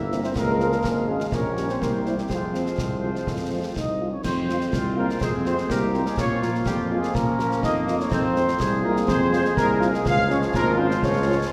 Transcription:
Already playing: tuba G1, trombone section E3 A#3, euphonium E4, woodwind section A#4 E5, trumpet section E5
0.11 french horn section A#3 C4 E4, snare
0.23 euphonium C4, trumpet section C5, snare
0.35 tuba C#2, trombone section F3 G#3, euphonium A#3, woodwind section G#4 F5, trumpet section A#4, concert bass drum, snare, crash
0.60 french horn section G#3 C#4 F4, snare
0.72 snare
0.84 tuba G#1, concert bass drum, snare
1.07 french horn section G#3 C#4 F4, euphonium G#3, trumpet section G#4
1.20 snare
1.32 tuba A#1, trombone section G3 C#4, euphonium A#3, woodwind section G4 C#5, trumpet section A#4, concert bass drum, snare
1.57 french horn section G3 C#4 G4, snare
1.69 euphonium C4, trumpet section C5, snare
1.81 tuba C2, euphonium A#3, trombone section C4, trumpet section A#4, woodwind section C5, concert bass drum, snare
2.06 french horn section G3 C4 E4, snare
2.18 euphonium G3, trumpet section G4, snare
2.30 tuba F2, euphonium F3, trombone section G#3 C4, trumpet section F4, woodwind section G#4 C5, concert bass drum, snare
2.54 french horn section G#3 C4 F4, snare
2.66 snare
2.78 tuba C2, concert bass drum, snare
3.02 french horn section G#3 C4 F4
3.15 snare
3.27 tuba F2, concert bass drum, snare
3.51 french horn section G#3 C4 F4
3.75 tuba C2, euphonium D#4, trumpet section D#5, concert bass drum, snare
4.00 french horn section G#3 C4 F4
4.12 euphonium C#4, trumpet section C#5
4.23 tuba F2, trombone section G#3 C4, euphonium C4, trumpet section C5, concert bass drum, snare, crash
4.48 french horn section G#3 C4 F4, snare
4.60 snare
4.73 tuba C2, woodwind section F4, concert bass drum, snare
4.97 french horn section G#3 C4 F4, euphonium A#3, trumpet section A#4
5.09 snare
5.20 tuba F2, euphonium C4, woodwind section G#4, trumpet section C5, concert bass drum, snare
5.45 french horn section G#3 C4 F4, euphonium C4, trumpet section C5, snare
5.58 snare
5.68 tuba C2, euphonium A#3, woodwind section G4, trumpet section A#4, concert bass drum, snare
5.93 french horn section G#3 C4 F4, snare
6.05 euphonium G#3, trumpet section G#4, snare
6.17 tuba A#2, trombone section F3 A#3, euphonium C#4, woodwind section F4, trumpet section C#5, concert bass drum, snare
6.41 french horn section F3 A#3 F4, euphonium A#3, trumpet section A#4, snare
6.55 snare
6.66 tuba F2, euphonium G3, trumpet section G4, concert bass drum, snare
6.90 french horn section F3 A#3 F4, euphonium G#3, trumpet section G#4
7.03 snare
7.14 tuba A#2, euphonium A#3, woodwind section C#4, trumpet section A#4, concert bass drum, snare
7.38 french horn section F3 A#3 F4, snare
7.51 snare
7.62 tuba F2, woodwind section A#3, euphonium D#4, trumpet section D#5, concert bass drum, snare
7.86 french horn section F3 A#3 F4, snare
7.99 euphonium C#4, trumpet section C#5, snare
8.11 tuba F2, trombone section F3, euphonium C4, woodwind section C4, trumpet section C5, concert bass drum, snare, crash
8.35 french horn section G#3 C4 F4, snare
8.48 snare
8.59 tuba C2, woodwind section G#4, concert bass drum, snare
8.82 french horn section G#3 C4 F4, euphonium A#3, trumpet section A#4
8.96 snare
9.07 tuba F2, trombone section G#3, euphonium C4, trumpet section C5, concert bass drum, snare
9.32 french horn section G#3 C4 F4, euphonium C4, trumpet section C5, snare
9.45 snare
9.56 tuba C2, euphonium A#3, trumpet section A#4, concert bass drum, snare
9.80 french horn section G#3 C4 F4, snare
9.94 euphonium G#3, trumpet section G#4, snare
10.05 tuba C#2, trombone section F3 G#3, euphonium F4, trumpet section F5, concert bass drum, snare
10.29 french horn section G#3 C#4 F4, euphonium C#4, trumpet section C#5, snare
10.42 snare
10.54 tuba G#1, euphonium A#3, woodwind section F4, trumpet section A#4, concert bass drum, snare
10.78 french horn section G#3 C#4 F4, euphonium C4, trumpet section C5
10.91 snare
11.02 tuba C#2, euphonium C#4, trumpet section C#5, concert bass drum, snare
11.27 french horn section G#3 C#4 F4

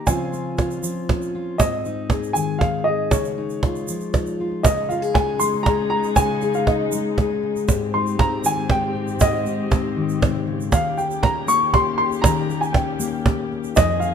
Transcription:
0.06 steel-string acoustic guitar C#3 F3 C4 C#4 F4, upright piano G#5, cajon bass, cajon slap, shaker
0.33 steel-string acoustic guitar C#4, cajon slap, shaker
0.58 steel-string acoustic guitar F4, cajon bass, cajon slap, shaker
0.71 shaker
0.82 steel-string acoustic guitar F3, shaker
1.09 steel-string acoustic guitar C#4, cajon bass, cajon slap
1.22 shaker
1.35 steel-string acoustic guitar F4
1.58 steel-string acoustic guitar G#2 C4, upright piano D#5, cajon bass, cajon slap, shaker
1.85 steel-string acoustic guitar D#4, cajon slap, shaker
2.10 steel-string acoustic guitar G#4, cajon bass, cajon slap, shaker
2.23 shaker
2.33 steel-string acoustic guitar D#3, upright piano G#5, cajon slap, shaker
2.59 steel-string acoustic guitar D#4, upright piano F5, cajon bass, cajon slap
2.84 steel-string acoustic guitar G#4, upright piano D#5
3.11 steel-string acoustic guitar C#3 G#3, upright piano C#5, cajon bass, cajon slap, shaker
3.25 shaker
3.38 steel-string acoustic guitar D#4, cajon slap
3.50 shaker
3.63 steel-string acoustic guitar F4, cajon bass, cajon slap
3.75 cajon slap, shaker
3.88 steel-string acoustic guitar F3, cajon slap, shaker
4.01 shaker
4.14 steel-string acoustic guitar D#4, cajon bass, cajon slap, shaker
4.26 cajon slap, shaker
4.40 steel-string acoustic guitar F4
4.52 cajon slap
4.63 steel-string acoustic guitar C#3, string section C#3 G#3 D#4, upright piano D#5, cajon bass, cajon slap, shaker
4.78 cajon slap
4.89 steel-string acoustic guitar F4, upright piano F5, cajon slap, shaker
5.02 steel-string acoustic guitar G#4, shaker
5.14 steel-string acoustic guitar D#4, upright piano G#5, cajon bass, cajon slap
5.40 steel-string acoustic guitar G#3, upright piano C6, shaker
5.54 cajon slap
5.63 steel-string acoustic guitar G#4, upright piano A#5, cajon bass, cajon slap
5.79 cajon slap
5.90 upright piano A#5, cajon slap
6.04 cajon slap, shaker
6.16 steel-string acoustic guitar C#3, upright piano G#5, cajon bass, cajon slap, shaker
6.29 cajon slap
6.41 steel-string acoustic guitar G#4, cajon slap, shaker
6.54 upright piano F5, shaker
6.67 steel-string acoustic guitar D#4, upright piano D#5, cajon bass, cajon slap
6.92 steel-string acoustic guitar G#3, shaker
7.18 steel-string acoustic guitar G#4, cajon bass, cajon slap
7.30 cajon slap
7.43 cajon slap
7.56 cajon slap, shaker
7.68 steel-string acoustic guitar G#2, string section G#2 C4 G4, cajon bass, cajon slap, shaker
7.81 cajon slap
7.94 steel-string acoustic guitar D#4, upright piano C6, cajon slap
8.07 shaker
8.19 steel-string acoustic guitar C4, upright piano A#5, cajon bass, cajon slap
8.44 steel-string acoustic guitar D#3, upright piano G#5, shaker
8.57 cajon slap
8.70 steel-string acoustic guitar D#4, upright piano G5, cajon bass, cajon slap
8.83 cajon slap
8.95 cajon slap
9.08 cajon slap, shaker
9.20 steel-string acoustic guitar G#2, upright piano D#5, cajon bass, cajon slap, shaker
9.34 cajon slap
9.46 steel-string acoustic guitar D#4, cajon slap, shaker
9.71 steel-string acoustic guitar C4, cajon bass, cajon slap, shaker
9.84 cajon slap
9.96 steel-string acoustic guitar D#3
10.09 cajon slap, shaker
10.21 steel-string acoustic guitar C3, cajon bass, cajon slap, shaker
10.35 cajon slap
10.47 steel-string acoustic guitar C#3, cajon slap
10.61 shaker
10.72 string section D#2 C#3 G4, steel-string acoustic guitar D#3, upright piano F5, cajon bass, cajon slap, shaker
10.85 cajon slap
10.98 steel-string acoustic guitar G4, upright piano G5, cajon slap, shaker
11.11 shaker
11.23 steel-string acoustic guitar C#4, upright piano A#5, cajon bass, cajon slap
11.47 steel-string acoustic guitar A#3, upright piano C#6, shaker
11.61 cajon slap
11.74 steel-string acoustic guitar G4, upright piano C6, cajon bass, cajon slap
11.86 cajon slap
11.98 upright piano C6, cajon slap
12.12 cajon slap, shaker
12.22 steel-string acoustic guitar D#3, upright piano A#5, cajon bass, cajon slap, shaker
12.36 cajon slap
12.49 steel-string acoustic guitar G4, cajon slap, shaker
12.61 upright piano G#5, shaker
12.73 steel-string acoustic guitar C#4, upright piano G5, cajon bass, cajon slap
12.99 steel-string acoustic guitar A#3, shaker
13.13 cajon slap
13.26 steel-string acoustic guitar G4, cajon bass, cajon slap
13.39 cajon slap
13.52 cajon slap
13.64 cajon slap, shaker
13.75 steel-string acoustic guitar F2, string section F2 D#3 G#4, upright piano D#5, cajon bass, cajon slap, shaker
13.90 cajon slap
14.00 steel-string acoustic guitar D#4, upright piano F5, cajon slap, shaker

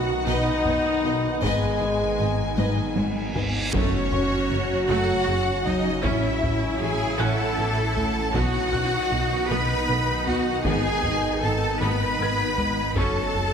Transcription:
Already playing: detuned saw bass B1, analog synth bass B2, trombone section D#3 B3, ambient pad B3 D#4 B4 D#5, french horn section F#4, viola section F#4, violin section F#5, grand piano D#6
0.26 double bass section B1, cello section B2, analog synth bass B2, viola section D#4, french horn section D#4, violin section B4 D#5
0.64 double bass section B1, cello section B2, analog synth bass B3, violin section B4 C#5, taiko low-mid
1.03 double bass section B1, cello section B2, analog synth bass B2, violin section B4 D#5
1.41 detuned saw bass G#1, double bass section G#1, cello section G#2, analog synth bass G#2, viola section G#3, french horn section G#3, violin section B4 D#5 G#5, taiko, reverse cymbal
1.81 analog synth bass G#2
2.19 double bass section G#1, cello section G#2, analog synth bass G#2, violin section B4 D#5
2.56 double bass section G#1, cello section G#2, analog synth bass G#2, violin section B4 D#5, taiko high
2.95 double bass section G#1, cello section G#2, analog synth bass G#3, violin section B4 C#5, taiko high
3.35 double bass section G#1, cello section G#2, analog synth bass G#2, violin section B4 D#5, taiko low
3.72 detuned saw bass F#1, double bass section F#1, analog synth bass F#2, trombone section C#3 F#3, french horn section F#3 C#4, viola section A3 F#4, cello section C#4, ambient pad C#4 F#4 C#5, violin section C#5, taiko, impact
4.12 analog synth bass F#2, grand piano C#6, taiko low
4.50 double bass section F#1, analog synth bass F#2, viola section A3
4.88 double bass section F#1, analog synth bass F#2, viola section A3, cello section F#4, violin section F#5, taiko rim
5.27 double bass section F#1, analog synth bass F#2, viola section G#3
5.65 analog synth bass F#3, cello section D#4, violin section D#5, taiko low
6.03 detuned saw bass A1, double bass section A1, analog synth bass A2, trombone section E3, viola section C#4 E4, cello section E4, ambient pad E4, violin section E5, taiko
6.43 analog synth bass A2, taiko low
6.81 double bass section A1, analog synth bass A2, viola section C#4, cello section G#4, violin section G#5
7.19 double bass section A1, analog synth bass A2, viola section C#4, cello section A4, grand piano F#5 F#6, violin section A5
7.58 double bass section A1, analog synth bass A2, viola section B3
7.97 analog synth bass A3, taiko low
8.34 detuned saw bass B1, double bass section B1, trombone section B2 D#3, analog synth bass B2, viola section B3 D#4, ambient pad B3 D#4 B4 D#5, french horn section B3 D#4, cello section F#4, violin section F#5, taiko
8.73 analog synth bass B2, grand piano F#5 F#6, taiko low
9.12 double bass section B1, analog synth bass B2, viola section B3
9.50 double bass section B1, analog synth bass B2, viola section B3, cello section B4, violin section B5
9.89 double bass section B1, analog synth bass B2, viola section A3
10.27 analog synth bass B3, cello section F#4, violin section F#5, taiko low
10.64 detuned saw bass G#1, double bass section G#1, analog synth bass G#2, viola section B3, french horn section B3, cello section G#4, ambient pad B4, violin section G#5, taiko
11.03 analog synth bass G#2, taiko low
11.42 double bass section G#1, analog synth bass G#2, viola section B3, cello section A4, violin section A5
11.80 double bass section G#1, analog synth bass G#2, viola section B3, cello section B4, violin section B5
12.19 double bass section G#1, analog synth bass G#2, viola section A4, grand piano G#6
12.58 analog synth bass G#3, taiko low
12.96 detuned saw bass F#1, double bass section F#1, analog synth bass F#2, trombone section C#3 F#3, french horn section A3 C#4, ambient pad C#4 F#4 A4 C#5, viola section C#4 F#4, cello section A4, grand piano C#5 C#6, violin section A5, taiko
13.35 analog synth bass F#2, taiko low

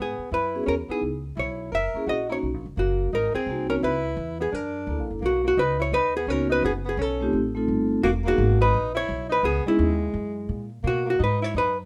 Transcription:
Already playing: upright bass G#2
0.00 alto saxophone B3, hollow-body jazz guitar G#4
0.18 muted upright bass stroke
0.31 upright bass F#2, alto saxophone E4, hollow-body jazz guitar B4
0.55 vibraphone B3 C#4 F#4 G#4
0.66 upright bass E2, alto saxophone C#4, hollow-body jazz guitar A#4
0.89 vibraphone B3 D#4 E4 G#4, alto saxophone B3, hollow-body jazz guitar G#4, muted upright bass stroke
1.01 upright bass C#2
1.36 upright bass B1, alto saxophone E4, hollow-body jazz guitar C#5
1.72 upright bass F#1, alto saxophone A#4, hollow-body jazz guitar E5
1.94 vibraphone A#3 C#4 E4 G#4, muted upright bass stroke
2.06 upright bass A#1, alto saxophone F#4, hollow-body jazz guitar D#5
2.29 vibraphone A#3 C#4 D#4 F#4, alto saxophone E4, hollow-body jazz guitar C#5
2.43 upright bass B1
2.54 upright bass A#1
2.66 upright bass F#1
2.77 upright bass F#1, alto saxophone A#3, hollow-body jazz guitar F#4
3.13 upright bass G#1, alto saxophone D#4, hollow-body jazz guitar A#4
3.34 alto saxophone C4, hollow-body jazz guitar G#4, muted upright bass stroke
3.46 upright bass C2, vibraphone A#3 C4 D#4 F#4
3.70 alto saxophone C#4, hollow-body jazz guitar A#4
3.82 upright bass C#2, alto saxophone E4, hollow-body jazz guitar B4
4.17 upright bass E2
4.40 alto saxophone B3, hollow-body jazz guitar G#4
4.52 upright bass F#2, alto saxophone D4, hollow-body jazz guitar A#4
4.87 upright bass D2, vibraphone A#3 D4 E4 A4
4.99 upright bass A#1
5.11 upright bass F#1
5.21 upright bass B1, alto saxophone A#3
5.26 hollow-body jazz guitar F#4
5.43 alto saxophone A#3
5.48 hollow-body jazz guitar F#4
5.57 upright bass C#2, alto saxophone D#4, hollow-body jazz guitar B4
5.79 alto saxophone E4, hollow-body jazz guitar C#5
5.92 upright bass D#2, alto saxophone D#4, hollow-body jazz guitar B4
6.16 alto saxophone B3, hollow-body jazz guitar G#4
6.27 upright bass C#2, vibraphone A#3 B3 C#4 D#4 F#4, alto saxophone C#4, hollow-body jazz guitar A#4
6.49 alto saxophone D#4, hollow-body jazz guitar B4
6.63 upright bass F#1, alto saxophone B3, hollow-body jazz guitar G#4
6.85 alto saxophone B3, hollow-body jazz guitar G#4
6.97 upright bass B1, alto saxophone C#4
7.02 hollow-body jazz guitar A4
7.20 vibraphone A3 C4 D#4 F4 G4
7.33 upright bass A1
7.55 vibraphone A3 C4 D#4 F4 A4
7.68 upright bass G1
8.03 upright bass E1, alto saxophone A#3, hollow-body jazz guitar F#4
8.24 vibraphone A#3 B3 D#4 F#4 G#4, alto saxophone A#3, hollow-body jazz guitar F#4
8.38 upright bass G#1
8.60 alto saxophone D#4, hollow-body jazz guitar B4
8.73 upright bass A#1
8.94 alto saxophone E4, hollow-body jazz guitar C#5
9.09 upright bass B1
9.29 alto saxophone D#4, hollow-body jazz guitar B4
9.43 upright bass C#2, alto saxophone B3, hollow-body jazz guitar G#4
9.66 alto saxophone G#3, vibraphone B3 C#4 D#4 E4 G#4, hollow-body jazz guitar E4, muted upright bass stroke
9.79 upright bass D#2
10.14 upright bass F#2
10.49 upright bass A#2
10.83 upright bass B2, alto saxophone A#3
10.87 hollow-body jazz guitar F#4
11.05 alto saxophone A#3
11.10 hollow-body jazz guitar F#4
11.19 upright bass G#2, alto saxophone D#4
11.24 hollow-body jazz guitar B4
11.42 alto saxophone E4, hollow-body jazz guitar C#5
11.54 upright bass F#2, alto saxophone D#4, hollow-body jazz guitar B4

